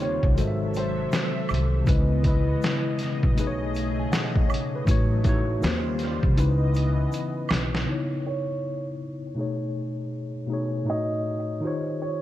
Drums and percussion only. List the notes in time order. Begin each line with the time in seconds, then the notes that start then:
0.23 kick
0.37 closed hi-hat, shaker
0.74 closed hi-hat, shaker
1.12 snare, closed hi-hat, shaker
1.49 high woodblock, shaker
1.54 closed hi-hat
1.86 kick, closed hi-hat, shaker
2.24 kick, closed hi-hat, shaker
2.62 snare, closed hi-hat, shaker
2.99 snare, closed hi-hat, shaker
3.23 kick
3.37 closed hi-hat, shaker
3.74 closed hi-hat, shaker
4.12 snare, closed hi-hat, shaker
4.36 kick
4.50 high woodblock, shaker
4.54 closed hi-hat
4.87 kick, closed hi-hat, shaker
5.24 kick, closed hi-hat, shaker
5.62 snare, closed hi-hat, shaker
5.99 snare, closed hi-hat, shaker
6.23 kick
6.38 closed hi-hat, shaker
6.74 closed hi-hat, shaker
7.12 closed hi-hat, shaker
7.49 snare, high woodblock, shaker
7.54 closed hi-hat
7.75 snare